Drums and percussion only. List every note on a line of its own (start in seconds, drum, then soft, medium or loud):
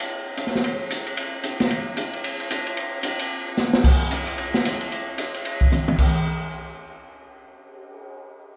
0.37 hi-hat pedal medium
0.37 ride medium
0.47 snare soft
0.55 snare soft
0.64 ride medium
0.90 hi-hat pedal medium
0.90 ride medium
1.06 ride soft
1.17 ride medium
1.44 hi-hat pedal soft
1.44 ride medium
1.60 snare soft
1.60 ride soft
1.70 ride medium
1.97 hi-hat pedal medium
1.97 ride medium
2.13 ride soft
2.24 ride medium
2.40 ride soft
2.50 hi-hat pedal medium
2.50 ride medium
2.67 ride soft
2.77 ride medium
3.03 hi-hat pedal medium
3.03 ride medium
3.19 ride medium
3.57 snare soft
3.57 hi-hat pedal medium
3.73 snare medium
3.84 kick medium
3.84 crash medium
4.11 hi-hat pedal medium
4.11 ride medium
4.27 ride soft
4.38 ride medium
4.54 snare soft
4.65 hi-hat pedal medium
4.65 ride medium
4.81 ride soft
4.92 ride medium
5.18 hi-hat pedal medium
5.18 ride medium
5.34 ride soft
5.45 ride medium
5.61 kick medium
5.72 hi-hat pedal soft
5.72 mid tom soft
5.88 mid tom medium
5.98 kick medium
5.98 crash medium
6.14 cymbal swell soft